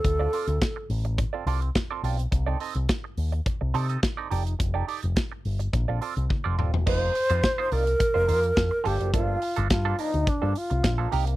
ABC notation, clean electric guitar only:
X:1
M:4/4
L:1/16
Q:1/4=106
K:Fmix
V:1 name="Clean electric guitar"
z [CFAd] [CFAd] z6 [CFAd] [CFAd]2 z [CFAd] [CFAd] z | z [CEAd] [CEAe] z6 z [CEAd] [CEAe] z [CEAd] [EGAd]2 | z [EGAd] [EGAd] z6 [CFAd] [CFAd]2 z [CFAd] [CFAd] z | [B,EFc]2 z [B,EFc] z [B,EFc] [B,EFd] z2 [B,EFc] [B,EFc] z3 [F,B,DA] [F,B,DA] |
[F,B,DA]2 z [F,B,DA] z [F,B,DA] [F,B,DB] z2 [F,B,DA]2 z2 [F,B,DA] [B,EGB]2 |]